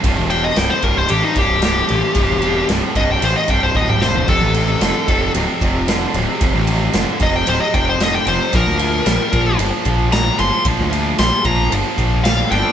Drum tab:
CC |----------------|----------------|x---------------|----------------|
RD |x-x-x-x-x-x-x-x-|x-x-x-x-x-x-----|--x-x-x-x-x-x-x-|x-x-x-x-x-x-x-x-|
SD |----o-------o---|----o---------o-|----o-------o---|----o-------o---|
T2 |----------------|-------------o--|----------------|----------------|
FT |----------------|---------------o|----------------|----------------|
BD |o-----o---o-----|o-----o---o-o---|o-----o---o-----|o-----o---o-----|

CC |----------------|----------------|
RD |x-x-x-x-x-x-x-x-|x-x-x-x-x-x-x-x-|
SD |----o-------o---|----o-------o---|
T2 |----------------|----------------|
FT |----------------|----------------|
BD |o-----o---o-----|o-----o---o-----|